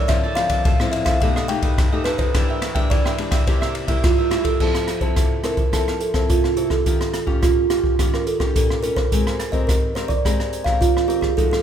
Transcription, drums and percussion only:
0.09 kick medium
0.09 cross-stick medium
0.09 ride medium
0.37 cross-stick medium
0.37 ride medium
0.49 kick medium
0.49 ride medium
0.65 kick medium
0.65 ride soft
0.80 cross-stick medium
0.93 ride soft
1.06 kick medium
1.06 cross-stick medium
1.06 ride medium
1.21 kick medium
1.21 ride soft
1.36 cross-stick medium
1.49 ride medium
1.62 kick medium
1.62 ride soft
1.78 kick medium
1.78 cross-stick medium
1.78 ride medium
2.05 cross-stick medium
2.05 ride soft
2.19 kick medium
2.19 ride soft
2.34 kick medium
2.34 cross-stick medium
2.34 ride medium
2.62 cross-stick medium
2.62 ride medium
2.75 kick medium
2.75 ride soft
2.91 kick medium
2.91 ride medium
3.06 cross-stick medium
3.18 ride medium
3.32 kick medium
3.32 cross-stick medium
3.32 ride medium
3.47 kick medium
3.47 ride medium
3.62 cross-stick medium
3.75 ride medium
3.88 kick medium
3.88 ride medium
4.04 kick medium
4.04 cross-stick medium
4.04 ride medium
4.31 cross-stick medium
4.31 ride soft
4.45 kick medium
4.45 ride soft
4.60 kick medium
4.60 crash medium
4.75 cross-stick medium
4.75 closed hi-hat soft
4.88 cross-stick medium
4.88 closed hi-hat soft
5.01 kick medium
5.01 closed hi-hat soft
5.16 kick medium
5.16 cross-stick medium
5.16 closed hi-hat medium
5.44 cross-stick medium
5.44 closed hi-hat soft
5.57 kick medium
5.57 closed hi-hat soft
5.73 kick medium
5.73 cross-stick medium
5.73 closed hi-hat medium
5.88 cross-stick medium
5.88 closed hi-hat soft
6.01 closed hi-hat soft
6.14 kick medium
6.14 cross-stick medium
6.14 closed hi-hat soft
6.30 kick medium
6.30 closed hi-hat medium
6.44 cross-stick medium
6.57 closed hi-hat soft
6.70 kick medium
6.70 cross-stick medium
6.86 kick medium
6.86 closed hi-hat medium
7.01 cross-stick medium
7.01 closed hi-hat soft
7.14 cross-stick medium
7.14 closed hi-hat medium
7.27 kick medium
7.43 kick medium
7.43 cross-stick medium
7.43 closed hi-hat medium
7.70 cross-stick medium
7.70 closed hi-hat soft
7.84 kick medium
7.99 kick medium
7.99 cross-stick medium
7.99 closed hi-hat medium
8.14 cross-stick medium
8.27 closed hi-hat medium
8.40 kick medium
8.40 cross-stick medium
8.56 kick medium
8.56 closed hi-hat medium
8.70 cross-stick medium
8.83 closed hi-hat medium
8.96 kick medium
8.96 cross-stick medium
9.12 kick medium
9.12 closed hi-hat medium
9.27 cross-stick medium
9.27 closed hi-hat soft
9.40 cross-stick medium
9.40 closed hi-hat medium
9.53 kick medium
9.53 closed hi-hat soft
9.69 kick medium
9.69 cross-stick medium
9.69 closed hi-hat medium
9.96 cross-stick medium
9.96 closed hi-hat soft
10.09 kick medium
10.09 closed hi-hat soft
10.25 kick medium
10.25 cross-stick medium
10.25 closed hi-hat medium
10.40 cross-stick medium
10.40 closed hi-hat soft
10.53 closed hi-hat soft
10.66 kick medium
10.66 cross-stick medium
10.66 closed hi-hat soft
10.82 kick medium
10.82 closed hi-hat medium
10.97 cross-stick medium
11.10 closed hi-hat soft
11.22 kick medium
11.22 cross-stick medium
11.38 kick medium
11.38 closed hi-hat medium
11.53 cross-stick medium
11.53 closed hi-hat soft

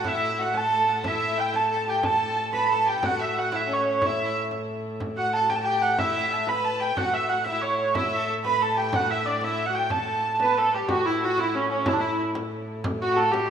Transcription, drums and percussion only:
0.04 frame drum medium
0.20 frame drum soft
0.54 frame drum medium
0.70 frame drum soft
1.04 frame drum medium
1.21 frame drum soft
1.54 frame drum medium
1.70 frame drum soft
2.03 frame drum medium
2.53 frame drum medium
2.71 frame drum soft
2.86 frame drum soft
3.03 frame drum medium
3.36 frame drum soft
3.52 frame drum medium
3.68 frame drum soft
4.02 frame drum medium
4.35 frame drum soft
4.51 frame drum medium
4.68 frame drum soft
5.00 frame drum medium
5.34 frame drum soft
5.50 frame drum medium
5.66 frame drum soft
5.98 frame drum medium
6.31 frame drum soft
6.47 frame drum medium
6.97 frame drum medium
7.31 frame drum soft
7.46 frame drum medium
7.63 frame drum soft
7.95 frame drum medium
8.28 frame drum soft
8.45 frame drum medium
8.61 frame drum soft
8.93 frame drum medium
9.41 frame drum medium
9.58 frame drum soft
9.90 frame drum medium
10.40 frame drum medium
10.56 frame drum soft
10.72 frame drum soft
10.89 frame drum medium
11.22 frame drum soft
11.38 frame drum medium
11.53 frame drum soft
11.86 frame drum medium
12.19 frame drum soft
12.35 frame drum medium
12.52 frame drum soft
12.84 frame drum loud
13.17 frame drum soft
13.34 frame drum medium

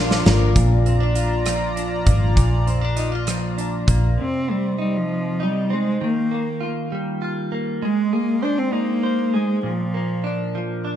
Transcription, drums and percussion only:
0.11 snare medium
0.26 snare loud
0.56 kick medium
0.56 closed hi-hat medium
0.86 closed hi-hat soft
1.15 closed hi-hat medium
1.46 cross-stick medium
1.46 closed hi-hat medium
1.77 closed hi-hat soft
2.07 kick medium
2.07 closed hi-hat medium
2.37 kick medium
2.37 closed hi-hat medium
2.67 closed hi-hat soft
2.97 closed hi-hat medium
3.27 cross-stick medium
3.27 closed hi-hat medium
3.58 closed hi-hat soft
3.88 kick medium
3.88 closed hi-hat medium

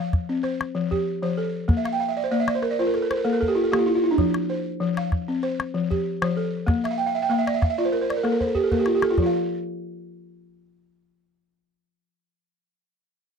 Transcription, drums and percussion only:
0.13 calabash thump medium
0.13 calabash click soft
0.44 calabash click soft
0.61 calabash click soft
0.92 calabash thump soft
1.69 calabash thump medium
1.85 calabash click medium
2.48 calabash click medium
2.63 calabash click soft
2.94 calabash click soft
3.11 calabash click medium
3.42 calabash thump soft
3.73 calabash click medium
4.18 calabash thump medium
4.34 calabash click medium
4.97 calabash click medium
5.12 calabash thump medium
5.12 calabash click soft
5.43 calabash click soft
5.60 calabash click medium
5.91 calabash thump medium
6.22 calabash click medium
6.68 calabash thump medium
6.68 calabash click soft
6.85 calabash click medium
7.31 calabash click soft
7.47 calabash click medium
7.62 calabash thump medium
7.62 calabash click soft
8.10 calabash click soft
8.25 calabash click soft
8.41 calabash thump soft
8.55 calabash thump soft
8.72 calabash thump medium
8.86 calabash click soft
9.02 calabash click medium
9.18 calabash thump medium

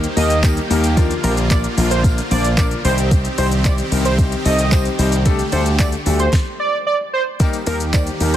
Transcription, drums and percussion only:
0.04 closed hi-hat medium
0.04 shaker medium
0.17 open hi-hat medium
0.17 tambourine medium
0.17 shaker soft
0.30 closed hi-hat medium
0.30 shaker medium
0.44 kick loud
0.44 clap loud
0.44 closed hi-hat medium
0.44 tambourine loud
0.44 shaker medium
0.57 closed hi-hat medium
0.57 shaker medium
0.71 open hi-hat medium
0.71 tambourine medium
0.71 shaker medium
0.84 closed hi-hat medium
0.84 tambourine soft
0.84 shaker medium
0.97 kick loud
0.97 closed hi-hat medium
0.97 tambourine soft
0.97 shaker medium
1.11 closed hi-hat soft
1.11 shaker soft
1.24 open hi-hat medium
1.24 tambourine medium
1.24 shaker medium
1.37 closed hi-hat medium
1.37 tambourine soft
1.37 shaker medium
1.51 kick loud
1.51 clap loud
1.51 closed hi-hat medium
1.51 tambourine medium
1.51 shaker medium
1.64 closed hi-hat medium
1.64 shaker medium
1.77 open hi-hat medium
1.77 tambourine soft
1.77 shaker medium
1.91 closed hi-hat medium
1.91 shaker medium
2.04 kick loud
2.04 closed hi-hat medium
2.04 tambourine medium
2.04 shaker medium
2.18 closed hi-hat medium
2.18 shaker medium
2.31 open hi-hat medium
2.31 tambourine soft
2.31 shaker soft
2.44 closed hi-hat medium
2.44 shaker medium
2.58 kick loud
2.58 clap loud
2.58 closed hi-hat medium
2.58 tambourine loud
2.58 shaker medium
2.71 closed hi-hat medium
2.71 shaker medium
2.85 open hi-hat medium
2.85 tambourine medium
2.85 shaker medium
2.98 closed hi-hat medium
2.98 tambourine soft
2.98 shaker medium
3.11 kick loud
3.11 closed hi-hat medium
3.11 tambourine soft
3.11 shaker medium
3.25 closed hi-hat soft
3.25 shaker soft
3.38 open hi-hat medium
3.38 tambourine medium
3.38 shaker medium
3.52 closed hi-hat medium
3.52 tambourine soft
3.52 shaker medium
3.65 kick loud
3.65 clap loud
3.65 closed hi-hat medium
3.65 tambourine medium
3.65 shaker medium
3.78 closed hi-hat medium
3.78 shaker medium
3.92 open hi-hat medium
3.92 tambourine soft
3.92 shaker medium
4.05 closed hi-hat medium
4.05 tambourine soft
4.05 shaker medium
4.18 kick loud
4.18 closed hi-hat medium
4.18 tambourine medium
4.18 shaker medium
4.32 closed hi-hat medium
4.32 shaker medium
4.45 open hi-hat medium
4.45 tambourine medium
4.45 shaker medium
4.59 closed hi-hat medium
4.59 shaker medium
4.72 kick loud
4.72 clap loud
4.72 closed hi-hat medium
4.72 tambourine loud
4.72 shaker medium
4.85 closed hi-hat medium
4.85 shaker medium
4.99 open hi-hat medium
4.99 tambourine medium
4.99 shaker medium
5.12 closed hi-hat medium
5.12 shaker medium
5.26 kick loud
5.26 closed hi-hat medium
5.26 tambourine soft
5.26 shaker medium
5.39 closed hi-hat medium
5.39 shaker medium
5.52 open hi-hat medium
5.52 tambourine medium
5.52 shaker medium
5.66 closed hi-hat medium
5.66 shaker medium
5.79 kick loud
5.79 clap loud
5.79 closed hi-hat medium
5.79 tambourine medium
5.79 shaker medium
5.92 closed hi-hat medium
5.92 shaker medium
6.06 open hi-hat medium
6.06 tambourine soft
6.06 shaker medium
6.20 closed hi-hat medium
6.20 tambourine soft
6.20 shaker medium
6.33 kick loud
6.33 snare medium
7.40 kick loud
7.40 closed hi-hat medium
7.40 tambourine soft
7.40 shaker medium
7.53 closed hi-hat medium
7.53 tambourine soft
7.53 shaker medium
7.67 open hi-hat medium
7.67 tambourine medium
7.67 shaker medium
7.80 closed hi-hat medium
7.80 shaker medium
7.93 kick loud
7.93 clap loud
7.93 closed hi-hat medium
7.93 tambourine medium
7.93 shaker medium
8.07 closed hi-hat medium
8.07 shaker medium
8.20 open hi-hat medium
8.20 tambourine soft
8.20 shaker medium
8.34 closed hi-hat medium
8.34 shaker medium

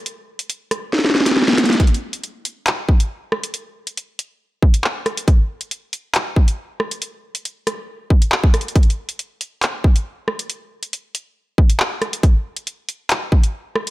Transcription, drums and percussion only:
0.06 closed hi-hat medium
0.39 closed hi-hat medium
0.50 closed hi-hat medium
0.71 cross-stick medium
0.71 closed hi-hat medium
0.93 snare medium
0.99 snare medium
1.05 snare medium
1.10 snare medium
1.15 snare medium
1.20 snare medium
1.26 snare medium
1.26 closed hi-hat medium
1.31 snare medium
1.36 snare medium
1.42 snare medium
1.48 snare medium
1.53 snare medium
1.58 snare loud
1.58 closed hi-hat medium
1.58 open hi-hat medium
1.64 snare medium
1.64 closed hi-hat medium
1.70 snare loud
1.70 closed hi-hat medium
1.75 snare medium
1.80 kick loud
1.80 closed hi-hat medium
1.87 closed hi-hat medium
1.94 closed hi-hat medium
2.13 closed hi-hat medium
2.24 closed hi-hat medium
2.45 closed hi-hat medium
2.67 clap loud
2.67 closed hi-hat medium
2.89 kick medium
3.00 closed hi-hat medium
3.32 cross-stick loud
3.44 closed hi-hat medium
3.54 closed hi-hat medium
3.87 closed hi-hat medium
3.97 closed hi-hat medium
4.19 closed hi-hat medium
4.62 kick medium
4.74 closed hi-hat medium
4.84 clap loud
5.06 cross-stick loud
5.06 closed hi-hat medium
5.17 closed hi-hat medium
5.28 kick loud
5.28 closed hi-hat medium
5.61 closed hi-hat medium
5.71 closed hi-hat medium
5.93 closed hi-hat medium
6.15 clap loud
6.15 closed hi-hat medium
6.36 kick medium
6.48 closed hi-hat medium
6.80 cross-stick medium
6.91 closed hi-hat medium
7.02 closed hi-hat medium
7.35 closed hi-hat medium
7.45 closed hi-hat medium
7.67 cross-stick loud
7.67 closed hi-hat medium
8.10 kick medium
8.22 closed hi-hat medium
8.32 clap loud
8.44 kick loud
8.54 cross-stick loud
8.54 closed hi-hat medium
8.54 open hi-hat medium
8.61 closed hi-hat medium
8.68 closed hi-hat medium
8.76 kick loud
8.76 closed hi-hat medium
8.83 closed hi-hat medium
8.90 closed hi-hat medium
9.09 closed hi-hat medium
9.19 closed hi-hat medium
9.41 closed hi-hat medium
9.63 clap loud
9.63 closed hi-hat medium
9.84 kick medium
9.96 closed hi-hat medium
10.28 cross-stick medium
10.39 closed hi-hat medium
10.50 closed hi-hat medium
10.83 closed hi-hat medium
10.93 closed hi-hat medium
11.15 closed hi-hat medium
11.58 kick medium
11.70 closed hi-hat medium
11.80 clap loud
12.02 cross-stick medium
12.02 closed hi-hat medium
12.13 closed hi-hat medium
12.23 kick loud
12.23 closed hi-hat medium
12.57 closed hi-hat medium
12.67 closed hi-hat medium
12.89 closed hi-hat medium
13.10 clap loud
13.10 closed hi-hat medium
13.32 kick medium
13.44 closed hi-hat medium
13.76 cross-stick loud
13.87 closed hi-hat medium

